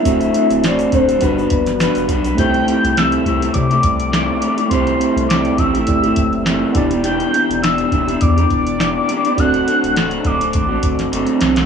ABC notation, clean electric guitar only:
X:1
M:4/4
L:1/16
Q:"Swing 16ths" 1/4=103
K:Clyd
V:1 name="Clean electric guitar"
[D,A,CF]2 [D,A,CF]2 [D,A,CF]2 [D,A,CF] [A,CF] [G,DFB] [DFB]3 [G,DFB]2 [G,DFB] [DFB] | [C,A,EG]2 [C,A,EG]2 [C,A,EG]2 [C,A,EG] [A,EG]2 [A,EG]3 [C,A,EG]2 [C,A,EG] [A,EG] | [C,A,EG]2 [C,A,EG]2 [C,A,EG]2 [C,A,EG] [A,EG]2 [A,EG]3 [C,A,EG]2 [E,B,DG] [B,DG] | [E,B,DG]2 [E,B,DG]2 [E,B,DG]2 [E,B,DG] [B,DG]2 [B,DG]3 [E,B,DG]2 [E,B,DG] [B,DG] |
[D,A,CF]2 [D,A,CF]2 [D,A,CF]2 [D,A,CF] [A,CF]2 [A,CF]3 [D,A,CF]2 [D,A,CF] [A,CF] |]